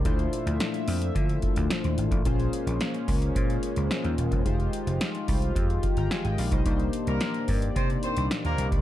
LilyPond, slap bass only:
\new Staff \with { instrumentName = "Slap bass" } { \clef bass \time 4/4 \key bes \major \tempo 4 = 109 d,8 r16 d,16 r8 f,8 d8 r16 d,16 r16 ees,16 aes,,16 a,,16 | bes,,8 r16 bes,,16 r8 des,8 bes,8 r16 des,16 r16 ees,16 ees,,16 e,,16 | f,,8 r16 f,,16 r8 c,8 f,8 r16 g,,16 r16 aes,,16 bes,,16 b,,16 | c,8 r16 c,16 r8 g,8 c8 r16 c,16 r16 ees,16 c,16 des,16 | }